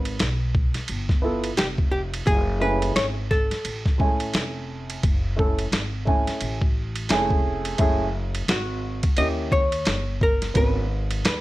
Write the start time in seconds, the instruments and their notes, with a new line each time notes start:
Already playing: upright bass G#1, hollow-body jazz guitar B4
0.05 ride
0.19 upright bass B1, snare, hi-hat pedal, ride
0.55 kick
0.74 muted upright bass stroke, snare, ride
0.88 upright bass G1, ride
1.09 kick, snare
1.22 upright piano B3 E4 F4 A4
1.44 ride
1.57 upright bass F1, hollow-body jazz guitar G4, snare, hi-hat pedal, ride
1.78 kick
1.91 hollow-body jazz guitar G4
2.14 ride
2.27 upright bass F#1, hollow-body jazz guitar G#4, kick, ride
2.60 upright piano A3 C#4 E4 G#4, hollow-body jazz guitar B4
2.82 ride
2.96 upright bass G#1, hollow-body jazz guitar C#5, snare, hi-hat pedal, ride
3.31 hollow-body jazz guitar A4, kick, snare
3.51 muted upright bass stroke, snare, ride
3.65 upright bass A1, ride
3.86 kick, snare
3.98 upright piano G#3 C#4 E4 G#5, kick
4.04 upright piano A3
4.20 ride
4.34 upright bass F1, snare, hi-hat pedal, ride
4.90 ride
5.03 upright bass F#1, kick, ride
5.37 upright piano A3 C#4 E4 A4, kick
5.59 ride
5.72 upright bass G#1, snare, hi-hat pedal, ride
6.05 upright piano A3 C#4 E4 G#5, kick
6.27 muted upright bass stroke, snare, ride
6.41 upright bass A1, ride
6.62 kick
6.96 ride
7.09 upright bass F1, upright piano G#3 C#4 E4 G#4, snare, hi-hat pedal, ride
7.15 upright piano A3
7.30 kick
7.65 ride
7.78 upright bass F#1, upright piano A3 C#4 E4 G#4, kick, ride
8.35 ride
8.48 upright bass G#1, hollow-body jazz guitar F#4, snare, hi-hat pedal, ride
9.03 muted upright bass stroke, kick, ride
9.17 upright bass D#2, upright piano A#3 C#4 E4 G4, hollow-body jazz guitar D#5, ride
9.52 hollow-body jazz guitar C#5, kick
9.72 ride
9.85 upright bass G1, snare, hi-hat pedal, ride
10.21 hollow-body jazz guitar A#4, kick
10.42 snare, ride
10.54 upright bass G#1, upright piano B3 C#4 F#4 A#4, hollow-body jazz guitar B4, kick, ride
11.11 ride
11.25 upright bass D#2, hollow-body jazz guitar B4, snare, hi-hat pedal, ride